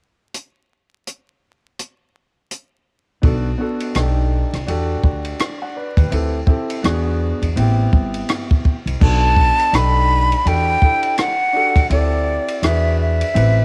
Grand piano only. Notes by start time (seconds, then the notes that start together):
3.22 B3 D4 F#4 A4
3.58 B3 D4 F#4 A4
3.95 D4 D#4 G4 A4
4.66 D4 F#4 G4 A4
5.62 D5 F#5
5.76 B4 D5
5.97 G4 B4
6.10 C4 E4 G4 A4
6.47 C4 E4 G4 A4
6.82 B3 D4 F#4 G#4
7.56 B3 C4 E4 G4
9.00 B3 D4 F#4 A4
9.72 D4 D#4 G4 A4
10.45 D4 F#4 G4 A4
10.81 D4 E4 G4 A4
11.53 D4 F#4 G4 A4
11.89 C4 E4 G4 A4
12.62 D4 F#4 G#4 B4
13.34 C4 E4 G4 B4